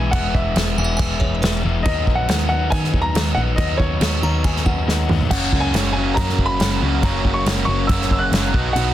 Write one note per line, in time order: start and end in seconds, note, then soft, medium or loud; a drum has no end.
0.00 0.12 B1 medium
0.00 0.11 E3 medium
0.00 0.11 G#3 medium
0.00 0.13 B3 medium
0.00 0.12 E4 medium
0.00 0.14 G#5 loud
0.11 0.34 E1 loud
0.11 0.55 E3 medium
0.11 0.55 G#3 loud
0.11 0.56 B3 loud
0.11 0.56 E4 loud
0.11 0.32 F#5 loud
0.11 kick loud
0.11 crash medium
0.34 0.55 E1 medium
0.34 1.60 E5 medium
0.34 kick medium
0.56 0.77 E1 medium
0.56 0.76 E3 medium
0.56 0.77 G#3 medium
0.56 0.78 B3 loud
0.56 0.78 E4 medium
0.56 snare loud
0.56 crash medium
0.78 0.99 E1 medium
0.78 0.98 E3 medium
0.78 0.98 G#3 medium
0.78 1.00 B3 medium
0.78 0.99 E4 loud
0.78 0.85 G#5 loud
0.84 1.00 F#5 loud
0.97 1.20 E1 loud
0.97 1.41 E3 loud
0.97 1.42 G#3 loud
0.97 1.43 B3 loud
0.97 1.42 E4 loud
0.97 1.20 G#5 loud
0.97 kick loud
0.97 crash medium
1.20 1.42 E1 loud
1.20 1.33 C#5 medium
1.20 kick medium
1.35 1.42 C#5 medium
1.42 1.63 E1 medium
1.42 1.62 E3 medium
1.42 1.63 G#3 medium
1.42 1.64 B3 medium
1.42 1.63 E4 medium
1.42 1.72 B4 medium
1.42 snare loud
1.42 crash medium
1.63 1.85 E1 medium
1.63 1.84 E3 medium
1.63 1.84 G#3 medium
1.63 1.85 B3 loud
1.63 1.84 E4 medium
1.83 2.06 D#2 loud
1.83 2.27 D#3 loud
1.83 2.28 F#3 loud
1.83 2.28 B3 loud
1.83 2.29 D#4 loud
1.83 2.17 D#5 loud
1.83 kick loud
1.83 crash medium
2.07 2.28 A#1 medium
2.07 kick medium
2.15 2.47 F#5 loud
2.28 2.71 D#2 medium
2.28 2.49 D#3 loud
2.28 2.49 F#3 medium
2.28 2.50 B3 loud
2.28 2.51 D#4 loud
2.28 snare loud
2.28 crash medium
2.49 2.70 D#3 medium
2.49 2.71 F#3 loud
2.49 2.71 B3 loud
2.49 2.71 D#4 loud
2.49 2.72 F#5 loud
2.70 3.13 D#3 loud
2.70 2.93 D#3 loud
2.70 3.14 F#3 loud
2.70 3.14 B3 loud
2.70 3.14 D#4 loud
2.70 3.04 G#5 loud
2.70 kick loud
2.70 crash medium
2.84 snare soft
2.94 3.14 D#2 loud
2.94 kick medium
3.02 3.33 A#5 loud
3.14 3.36 D#2 medium
3.14 3.35 D#3 medium
3.14 3.36 F#3 medium
3.14 3.36 B3 medium
3.14 3.36 D#4 medium
3.14 snare loud
3.14 crash medium
3.35 3.57 A#1 medium
3.35 3.57 D#3 medium
3.35 3.58 F#3 medium
3.35 3.58 B3 loud
3.35 3.58 D#4 medium
3.35 3.40 F#5 loud
3.56 3.79 D#2 loud
3.56 4.01 D#3 medium
3.56 4.02 F#3 loud
3.56 4.01 B3 loud
3.56 4.01 D#4 loud
3.56 3.79 D#5 loud
3.56 kick loud
3.56 crash medium
3.78 4.00 D#2 loud
3.78 5.04 C#5 loud
3.78 kick medium
4.01 4.22 D#2 loud
4.01 4.22 D#3 medium
4.01 4.24 F#3 medium
4.01 4.23 B3 loud
4.01 4.23 D#4 loud
4.01 snare loud
4.01 crash medium
4.23 4.43 D#2 medium
4.23 4.44 D#3 medium
4.23 4.45 F#3 medium
4.23 4.44 B3 loud
4.23 4.45 D#4 loud
4.23 4.43 A#5 loud
4.44 4.65 D#2 medium
4.44 4.86 D#3 loud
4.44 4.87 F#3 loud
4.44 4.87 B3 medium
4.44 4.88 D#4 loud
4.44 4.54 G#5 loud
4.44 kick loud
4.44 crash medium
4.57 snare soft
4.66 4.87 D#2 loud
4.66 5.16 F#5 medium
4.66 kick medium
4.87 5.08 D#2 loud
4.87 5.08 D#3 medium
4.87 5.09 F#3 medium
4.87 5.09 B3 medium
4.87 5.09 D#4 loud
4.87 snare medium
5.09 5.30 D#2 medium
5.09 5.29 D#3 medium
5.09 5.31 F#3 medium
5.09 5.30 B3 medium
5.09 5.30 D#4 medium
5.09 mid tom medium
5.21 floor tom medium
5.30 5.51 F#1 loud
5.30 5.73 F#2 loud
5.30 5.73 C#3 loud
5.30 5.75 F#3 loud
5.30 5.75 A#3 loud
5.30 5.75 C#4 loud
5.30 5.75 F#4 loud
5.30 5.64 F#5 medium
5.30 kick loud
5.30 crash loud
5.30 crash medium
5.52 5.73 C#2 loud
5.52 kick medium
5.60 5.91 G#5 loud
5.74 6.15 F#1 loud
5.74 5.94 F#2 medium
5.74 5.95 C#3 medium
5.74 5.96 F#3 medium
5.74 5.95 A#3 loud
5.74 5.96 C#4 loud
5.74 5.97 F#4 loud
5.74 snare loud
5.74 crash medium
5.92 6.15 F#2 medium
5.92 6.15 C#3 medium
5.92 6.14 G#5 loud
5.97 6.17 F#3 loud
5.97 6.16 A#3 loud
5.97 6.17 C#4 loud
5.97 6.18 F#4 medium
6.14 6.58 F#2 medium
6.14 6.38 F#2 loud
6.14 6.59 C#3 loud
6.14 6.60 F#3 loud
6.14 6.60 A#3 loud
6.14 6.60 C#4 loud
6.14 6.49 A#5 loud
6.14 kick loud
6.14 crash medium
6.19 6.61 F#4 loud
6.29 snare soft
6.38 6.59 F#1 medium
6.38 kick medium
6.46 6.77 B5 loud
6.60 6.81 F#1 loud
6.60 6.80 F#2 medium
6.60 6.81 C#3 medium
6.60 6.82 F#3 medium
6.60 6.81 A#3 medium
6.60 6.82 C#4 medium
6.60 6.83 F#4 loud
6.60 snare loud
6.60 crash medium
6.81 7.02 C#2 medium
6.81 7.01 F#2 medium
6.81 7.02 C#3 loud
6.81 7.03 F#3 medium
6.81 7.03 A#3 loud
6.81 7.03 C#4 loud
6.81 7.05 F#4 loud
7.02 7.24 F#1 loud
7.02 7.45 F#2 loud
7.02 7.46 C#3 loud
7.02 7.46 F#3 loud
7.02 7.46 A#3 loud
7.02 7.47 C#4 loud
7.02 7.48 F#4 loud
7.02 7.36 A#5 medium
7.02 kick loud
7.02 crash medium
7.25 7.45 F#1 loud
7.25 kick medium
7.34 7.64 C#6 loud
7.46 7.66 F#1 loud
7.46 7.66 F#2 medium
7.46 7.67 C#3 loud
7.46 7.68 F#3 medium
7.46 7.67 A#3 loud
7.46 7.68 C#4 loud
7.46 7.70 F#4 medium
7.46 snare loud
7.46 crash medium
7.65 7.88 F#1 medium
7.65 7.88 F#2 medium
7.65 7.89 C#3 loud
7.65 7.89 F#3 medium
7.65 7.89 A#3 loud
7.65 7.90 C#4 loud
7.65 7.89 C#6 loud
7.70 7.90 F#4 medium
7.87 8.10 F#1 loud
7.87 8.31 F#2 loud
7.87 8.31 C#3 loud
7.87 8.32 F#3 loud
7.87 8.32 A#3 loud
7.87 8.32 C#4 loud
7.87 8.10 E6 loud
7.87 kick loud
7.87 crash medium
7.91 8.34 F#4 loud
8.02 snare soft
8.11 8.31 F#1 medium
8.11 8.20 E6 medium
8.11 kick loud
8.19 8.50 F#6 loud
8.32 8.53 F#1 medium
8.32 8.53 F#2 medium
8.32 8.53 C#3 medium
8.32 8.53 F#3 medium
8.32 8.53 A#3 medium
8.32 8.53 C#4 loud
8.32 8.54 F#4 loud
8.32 snare loud
8.32 crash medium
8.53 8.75 B1 medium
8.53 8.74 B2 loud
8.53 8.75 F#3 loud
8.53 8.77 B3 loud
8.53 8.76 D#4 loud
8.53 8.76 F#4 loud
8.53 kick loud
8.73 8.94 B1 loud
8.73 8.94 B2 loud
8.73 8.94 F#3 loud
8.73 8.94 F#5 loud
8.73 crash medium
8.77 8.94 B3 loud
8.77 8.94 D#4 loud
8.77 8.94 F#4 loud